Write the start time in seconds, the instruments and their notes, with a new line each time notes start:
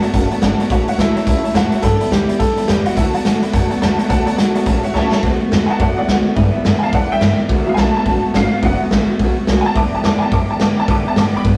0.02 steel-string acoustic guitar B3 F#4, honky-tonk piano D5 F#5 A5, muted upright bass stroke, closed hi-hat
0.06 steel-string acoustic guitar A3
0.13 upright bass F#1, steel-string acoustic guitar F#3 A3 B3 F#4, honky-tonk piano D5 F#5 A5, kick, closed hi-hat
0.30 steel-string acoustic guitar A3 B3 F#4, honky-tonk piano D5 F#5 A5, muted upright bass stroke, closed hi-hat
0.41 upright bass G1, steel-string acoustic guitar D3 F#3 A3 B3 F#4, honky-tonk piano D5 F#5 A5 B5, snare, closed hi-hat
0.58 steel-string acoustic guitar B3 F#4, honky-tonk piano D5 F#5 A5, muted upright bass stroke, closed hi-hat
0.63 steel-string acoustic guitar A3
0.69 upright bass A1, steel-string acoustic guitar A2 F#3 A3 C#4 E4, upright piano F#4, honky-tonk piano C#5 E5 A5, kick, closed hi-hat
0.86 steel-string acoustic guitar A3 C#4 E4, upright piano F#4, honky-tonk piano C#5 E5 F#5, muted upright bass stroke, closed hi-hat
0.97 upright bass D2, steel-string acoustic guitar A2 F#3 A3 C#4 E4, upright piano E4, honky-tonk piano C#5 E5 A5, snare, closed hi-hat
1.14 steel-string acoustic guitar C#4 E4, honky-tonk piano C#5 E5 A5, muted upright bass stroke, closed hi-hat
1.19 steel-string acoustic guitar A3
1.25 upright bass C#2, steel-string acoustic guitar F#3 A3 C#4 E4, upright piano E4, honky-tonk piano C#5 E5 A5, kick, closed hi-hat
1.42 steel-string acoustic guitar A3 C#4 E4, honky-tonk piano C#5 E5 A5, muted upright bass stroke, closed hi-hat
1.53 upright bass E2, steel-string acoustic guitar A2 F#3 A3 C#4 E4, upright piano F#4, honky-tonk piano C#5 E5 A5, snare, closed hi-hat
1.71 steel-string acoustic guitar A3 C#4 E4, honky-tonk piano C#5 E5 A5, muted upright bass stroke, closed hi-hat
1.82 steel-string acoustic guitar G2 D3 E3 G3 B3 E4, upright bass G2, upright piano A4, honky-tonk piano D5 G5 B5, kick, closed hi-hat
1.99 steel-string acoustic guitar E3 G3 B3 E4, honky-tonk piano D5 G5 B5, muted upright bass stroke, closed hi-hat
2.10 upright bass D2, steel-string acoustic guitar G2 D3 E3 G3 B3 E4, upright piano G4, honky-tonk piano D5 G5 B5, snare, closed hi-hat
2.27 steel-string acoustic guitar E3 G3 B3 E4, honky-tonk piano D5 G5 B5, muted upright bass stroke, closed hi-hat
2.39 upright bass F#2, steel-string acoustic guitar E3 G3 B3 E4, upright piano A4, honky-tonk piano D5 G5 B5, kick, closed hi-hat
2.56 steel-string acoustic guitar E3 G3 B3 E4, honky-tonk piano D5 G5 B5, muted upright bass stroke, closed hi-hat
2.67 upright bass E2, steel-string acoustic guitar G2 D3 E3 G3 B3, upright piano G4, honky-tonk piano D5 G5 B5, snare, closed hi-hat
2.71 steel-string acoustic guitar E4
2.85 steel-string acoustic guitar E3 G3 B3 E4, upright piano F#4, honky-tonk piano D5 G5 B5, muted upright bass stroke, closed hi-hat
2.96 upright bass D2, steel-string acoustic guitar D3 A3 B3 F#4, upright piano E4, honky-tonk piano D5 F#5 A5, kick, closed hi-hat
3.14 steel-string acoustic guitar A3 B3 F#4, upright piano F#4, honky-tonk piano D5 F#5 A5, muted upright bass stroke, closed hi-hat
3.25 upright bass G2, steel-string acoustic guitar D3 A3 B3 F#4, honky-tonk piano D5 F#5 A5, snare, closed hi-hat
3.41 steel-string acoustic guitar B3 F#4, honky-tonk piano D5 F#5 B5, muted upright bass stroke, closed hi-hat
3.46 steel-string acoustic guitar A3
3.52 upright bass F#2, steel-string acoustic guitar D3 A3 B3 F#4, honky-tonk piano D5 F#5 A5, kick, closed hi-hat
3.70 steel-string acoustic guitar A3 B3 F#4, honky-tonk piano D5 F#5 A5, muted upright bass stroke, closed hi-hat
3.81 upright bass E2, steel-string acoustic guitar D3 A3 B3 F#4, honky-tonk piano D5 F#5 A5, snare, closed hi-hat
3.98 steel-string acoustic guitar B3 F#4, honky-tonk piano D5 F#5 A5, muted upright bass stroke, closed hi-hat
4.02 steel-string acoustic guitar A3
4.09 upright bass D2, steel-string acoustic guitar D3 A3 B3 F#4, honky-tonk piano D5 F#5 A5, kick, closed hi-hat
4.26 steel-string acoustic guitar A3 B3 F#4, honky-tonk piano D5 F#5 A5, muted upright bass stroke, closed hi-hat
4.37 upright bass B1, steel-string acoustic guitar D3 A3 B3 F#4, honky-tonk piano D5 F#5 A5, snare, closed hi-hat
4.55 steel-string acoustic guitar A3 B3 F#4, honky-tonk piano D5 F#5 A5, muted upright bass stroke, closed hi-hat
4.66 upright bass A1, steel-string acoustic guitar E3 A3 C#4 F#4, honky-tonk piano C#5 E5 A5, kick, closed hi-hat
4.83 steel-string acoustic guitar C#4 F#4, honky-tonk piano C#5 E5 F#5, muted upright bass stroke, closed hi-hat
4.87 steel-string acoustic guitar A3
4.94 upright bass C#2, steel-string acoustic guitar A2 E3 A3 C#4 F#4, honky-tonk piano C#5 E5 A5, snare
5.12 steel-string acoustic guitar C#4 F#4, honky-tonk piano C#5 E5 A5, muted upright bass stroke, snare
5.16 steel-string acoustic guitar A3
5.23 upright bass D2, steel-string acoustic guitar D3 A3 B3 F#4, kick, open hi-hat
5.40 steel-string acoustic guitar A3 B3 F#4, muted upright bass stroke
5.51 upright bass E2, steel-string acoustic guitar D3 A3 B3 F#4, snare, open hi-hat
5.66 honky-tonk piano E3 F#3 B3 F#5 G#5, steel-string acoustic guitar B3 F#4, muted upright bass stroke
5.71 steel-string acoustic guitar A3, honky-tonk piano A5
5.79 upright bass F#2, steel-string acoustic guitar D3 A3 B3 F#4, honky-tonk piano D5 F#5, kick, open hi-hat
5.97 steel-string acoustic guitar A3 B3 F#4, honky-tonk piano D5 F#5, muted upright bass stroke
6.08 upright bass D2, steel-string acoustic guitar D3 A3 B3 F#4, snare, open hi-hat
6.25 steel-string acoustic guitar A3 B3 F#4, muted upright bass stroke
6.35 steel-string acoustic guitar G2 D3 E3 G3 B3 E4, upright bass G2, honky-tonk piano E3 A3 B3, kick, open hi-hat
6.53 steel-string acoustic guitar E3 G3 B3 E4, muted upright bass stroke
6.64 upright bass F#2, steel-string acoustic guitar G2 D3 E3 G3 B3 E4, snare, open hi-hat
6.79 steel-string acoustic guitar B3 E4, honky-tonk piano F5 G#5, muted upright bass stroke
6.84 steel-string acoustic guitar E3 G3, honky-tonk piano A5
6.92 upright bass E2, steel-string acoustic guitar E3 G3 B3 E4, honky-tonk piano D5 F#5, kick, open hi-hat
7.09 honky-tonk piano E3 A3 B3 E5 G5, steel-string acoustic guitar E3 G3 B3 E4, muted upright bass stroke
7.21 upright bass G2, steel-string acoustic guitar G2 D3 E3 G3 B3 E4, snare, open hi-hat
7.38 steel-string acoustic guitar E3 G3 B3 E4, muted upright bass stroke
7.49 upright bass D2, steel-string acoustic guitar D3 F#3 A3 B3 F#4, kick, open hi-hat
7.64 honky-tonk piano E3 F#3 B3 E5, steel-string acoustic guitar B3 F#4, muted upright bass stroke
7.69 steel-string acoustic guitar A3, honky-tonk piano F5
7.74 upright bass B1, steel-string acoustic guitar D3, honky-tonk piano G#5, snare, open hi-hat
7.79 steel-string acoustic guitar F#3 A3 B3 F#4, honky-tonk piano A5
7.94 steel-string acoustic guitar B3 F#4, honky-tonk piano A5, muted upright bass stroke
7.99 steel-string acoustic guitar A3
8.05 upright bass A1, steel-string acoustic guitar F#3 A3 B3, kick, open hi-hat
8.10 steel-string acoustic guitar F#4
8.22 steel-string acoustic guitar B3 F#4, muted upright bass stroke
8.26 steel-string acoustic guitar A3
8.33 upright bass G1, steel-string acoustic guitar D3 F#3 A3 B3 F#4, honky-tonk piano F5, snare, open hi-hat
8.51 steel-string acoustic guitar A3 B3 F#4, muted upright bass stroke
8.62 upright bass F#1, steel-string acoustic guitar D3 F#3 A3 B3 F#4, honky-tonk piano E3 F#3 B3 F#5, kick, open hi-hat
8.80 steel-string acoustic guitar B3 F#4, muted upright bass stroke
8.84 steel-string acoustic guitar A3
8.91 upright bass A1, steel-string acoustic guitar D3 F#3 A3 B3 F#4, snare, open hi-hat
9.08 steel-string acoustic guitar F#4, muted upright bass stroke
9.12 steel-string acoustic guitar A3 B3
9.19 upright bass B1, steel-string acoustic guitar F#3 A3 B3, kick, open hi-hat
9.24 steel-string acoustic guitar F#4
9.36 steel-string acoustic guitar F#4, muted upright bass stroke
9.40 steel-string acoustic guitar A3 B3
9.47 upright bass C2, steel-string acoustic guitar D3 F#3 A3 B3, snare, open hi-hat
9.52 steel-string acoustic guitar F#4
9.61 honky-tonk piano G#5
9.65 steel-string acoustic guitar A3 B3 F#4, honky-tonk piano A5, muted upright bass stroke
9.74 upright bass D2, steel-string acoustic guitar G2 D3 E3, honky-tonk piano E3 A3 B3 D6, kick, open hi-hat
9.79 steel-string acoustic guitar G3 B3 G4
9.94 steel-string acoustic guitar E3 G3 B3 G4, honky-tonk piano A5, muted upright bass stroke
10.04 upright bass E2, steel-string acoustic guitar G2 D3 E3 G3 B3 G4, honky-tonk piano D6, snare, open hi-hat
10.19 steel-string acoustic guitar G4, honky-tonk piano G#5 A5, muted upright bass stroke
10.23 steel-string acoustic guitar E3 G3 B3
10.32 upright bass F#2, steel-string acoustic guitar E3 G3 B3, honky-tonk piano D6, kick, open hi-hat
10.36 steel-string acoustic guitar G4
10.49 steel-string acoustic guitar E3 G3 B3 G4, honky-tonk piano A5, muted upright bass stroke
10.60 steel-string acoustic guitar G2 D3 E3 G3 B3 G4, upright bass G2, honky-tonk piano D6, snare, open hi-hat
10.77 steel-string acoustic guitar E3 G3 B3 G4, honky-tonk piano A5, muted upright bass stroke
10.87 steel-string acoustic guitar G2 D3 E3 G3 B3 G4, upright bass B2, honky-tonk piano E3 A3 B3 D6, kick, open hi-hat
11.05 steel-string acoustic guitar E3 G3 B3 G4, honky-tonk piano A5, muted upright bass stroke
11.16 steel-string acoustic guitar G2 D3 E3 G3 B3 G4, upright bass A2, honky-tonk piano D6, snare, open hi-hat
11.33 steel-string acoustic guitar E3 G3 B3 G4, honky-tonk piano B5 D6, muted upright bass stroke
11.44 upright bass G2, steel-string acoustic guitar E3 G3 B3 G4, kick, open hi-hat